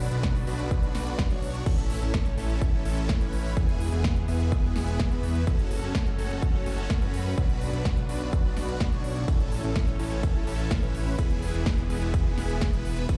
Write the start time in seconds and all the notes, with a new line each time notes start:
Already playing: F#3 B3 D4
0.11 B1 D4 F#4 B4, closed hi-hat
0.23 kick, snare, closed hi-hat
0.35 open hi-hat
0.47 B1 D4 F#4 B4, open hi-hat
0.59 closed hi-hat
0.71 kick, closed hi-hat
0.83 closed hi-hat
0.95 B1 D4 F#4 B4, snare, open hi-hat
1.07 closed hi-hat
1.19 kick, snare, closed hi-hat
1.30 B1 D4 F#4 C#5, closed hi-hat
1.42 open hi-hat
1.54 closed hi-hat
1.66 A1 E3 A3 C#4 E4 A4, kick, closed hi-hat, crash
1.78 closed hi-hat
1.90 open hi-hat
2.02 A1 C#4 E4 A4, closed hi-hat
2.14 kick, snare, closed hi-hat
2.26 closed hi-hat
2.38 A1 C#4 E4 A4, open hi-hat
2.50 closed hi-hat
2.61 kick, closed hi-hat
2.85 A1 C#4 E4 A4, open hi-hat
2.97 closed hi-hat
3.09 kick, snare, closed hi-hat
3.21 A1 C#4 E4 B4, closed hi-hat
3.33 open hi-hat
3.45 open hi-hat
3.57 E1 G#3 B3 E4 G#4, kick, closed hi-hat
3.69 closed hi-hat
3.80 open hi-hat
3.92 E1 B3 E4 G#4, closed hi-hat
4.04 kick, snare, closed hi-hat
4.16 closed hi-hat
4.28 E1 B3 E4 G#4, open hi-hat
4.40 closed hi-hat
4.52 kick, closed hi-hat
4.76 E1 B3 E4 G#4, snare, open hi-hat
4.88 closed hi-hat
4.99 kick, snare, closed hi-hat
5.11 E2 B3 E4 B4, closed hi-hat
5.23 open hi-hat
5.35 closed hi-hat
5.47 F#1 F#3 A3 C#4 F#4 A4, kick, closed hi-hat
5.59 closed hi-hat
5.71 open hi-hat
5.83 F#1 C#4 F#4 A4, closed hi-hat
5.95 kick, snare, closed hi-hat
6.07 closed hi-hat
6.19 F#1 C#4 F#4 A4, open hi-hat
6.30 closed hi-hat
6.42 kick, closed hi-hat
6.66 F#1 C#4 F#4 A4, open hi-hat
6.78 closed hi-hat
6.90 kick, snare, closed hi-hat
7.02 F#2 C#4 F#4 B4, closed hi-hat
7.14 open hi-hat
7.38 B1 B3 D4 F#4 B4, kick, closed hi-hat
7.49 closed hi-hat
7.61 open hi-hat
7.73 B1 D4 F#4 B4, closed hi-hat
7.85 kick, snare, closed hi-hat
7.97 closed hi-hat
8.09 B1 D4 F#4 B4, open hi-hat
8.21 closed hi-hat
8.33 kick, closed hi-hat
8.57 B1 D4 F#4 B4, snare, open hi-hat
8.69 closed hi-hat
8.80 kick, snare, closed hi-hat
8.92 B1 D4 F#4 C#5, closed hi-hat
9.04 open hi-hat
9.16 closed hi-hat
9.28 A1 E3 A3 C#4 E4 A4, kick, closed hi-hat, ride
9.40 closed hi-hat
9.52 open hi-hat
9.64 A1 C#4 E4 A4, closed hi-hat
9.76 kick, snare, closed hi-hat, ride
9.88 closed hi-hat
9.99 A1 C#4 E4 A4, open hi-hat
10.11 closed hi-hat
10.23 kick, closed hi-hat, ride
10.47 A1 C#4 E4 A4, open hi-hat
10.59 closed hi-hat
10.71 kick, snare, closed hi-hat, ride
10.83 A1 C#4 E4 B4, closed hi-hat
10.95 open hi-hat
11.07 open hi-hat
11.18 E1 G#3 B3 E4 G#4, kick, closed hi-hat, ride
11.30 closed hi-hat
11.42 open hi-hat
11.54 E1 B3 E4 G#4, closed hi-hat
11.66 kick, snare, closed hi-hat, ride
11.78 closed hi-hat
11.90 E1 B3 E4 G#4, open hi-hat
12.02 closed hi-hat
12.14 kick, closed hi-hat, ride
12.38 E1 B3 E4 G#4, snare, open hi-hat
12.50 closed hi-hat
12.61 kick, snare, closed hi-hat, ride
12.73 E1 B3 E4 B4, closed hi-hat
12.85 open hi-hat
12.97 closed hi-hat
13.09 F#1 F#3 A3 C#4 F#4 A4, kick, closed hi-hat, ride